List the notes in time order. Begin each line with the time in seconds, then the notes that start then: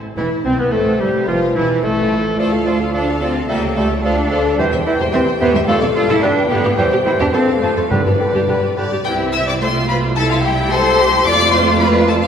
0.16 E1 E3 E4
0.44 C2 C4
0.58 B1 B3 B4
0.71 A1 A3 A4 C5
1.00 G1 G3 G4
1.26 F1 F3 F4 B4
1.55 E1 E3 E4
1.82 A1 A3 E4 A4
2.38 D2 F3 A3 F4 A4 D5 A5
2.52 A4 F5
2.65 F3 F4 A4 D5 A5
2.79 A4 F5
2.93 F3 D4 F4 A4 D5 A5
3.07 A4 F5
3.21 F3 C4 F4 A4 D5 A5
3.35 A4 F5
3.48 C#2 G3 A#3 G4 A4 E5 A5
3.62 A4 C#5 G5
3.76 G3 A3 G4 A4 E5 A5
3.90 A4 C#5 G5
4.02 D2 F3 D4 F4 A4 D5 F5
4.16 A4 D5 F5
4.30 F3 F4 A4 D5 F5
4.44 A4 D5 F5
4.58 E2 E3 G3 G4 C5 E5 G5
4.71 E2 C5 E5
4.86 E3 E4 C5 E5
4.99 E2 G4 C5
5.12 E2 E3 C4 G4 C5 E5
5.26 E2 C5
5.40 E2 E3 B3 G4 C5 E5
5.54 E2 G3 C5 E5
5.68 F2 D3 A3 F4 A4 F5
5.82 F2 A4 D5
5.95 D3 F4 A4 F5
6.09 F2 E4 F4 A4
6.22 G2 D3 D4 G4 B4 G5
6.37 G2 G4
6.50 G2 D3 B3 D4 G4 B4 G5
6.64 G2 G4 B4
6.77 E2 E3 G3 E4 G4 C5 G5
6.91 E2 G4 C5
7.06 E3 E4 C5 G5
7.20 E2 D4 E4 G4
7.33 F2 F3 C4 A4 C5 F5 A5
7.48 F2 A4
7.62 F2 F3 A3 F4 A4 C5 A5
7.76 F2 A4 C5
7.90 G2 D3 G3 D4 G4 B4 D5 G5
8.05 G2 G4 B4
8.20 D3 B4 G5
8.33 G2 D4 G4
8.48 G2 D3 G4 B4 G5
8.63 G2 G4
8.76 G2 D3 G4 B4 D5 G5
8.91 G2 G4
9.05 C2 C4 E4 G4 G5
9.33 E5 E6
9.47 D5 D6
9.61 A3 F4 C5 C6
9.88 B4 B5
10.16 G3 E4 A4 A5
10.30 F4 F5
10.43 G4 G5
10.71 A4 C5 C6
10.98 G4
11.24 F2 A3 F4 D5 D6
11.51 C5 C6
11.79 B4 B5
12.08 A4 A5
12.21 F4 F5